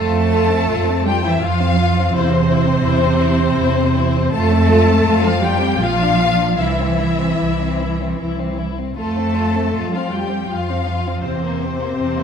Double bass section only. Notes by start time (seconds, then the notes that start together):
Already playing: F2
0.69 F2
1.42 F2
2.13 E2
2.82 E2
3.54 E2
4.34 F2
5.05 F2
5.78 A#1
6.57 C2
7.40 C2
8.19 C2
8.97 F2
9.74 F2
10.48 F2
11.24 E2
11.98 E2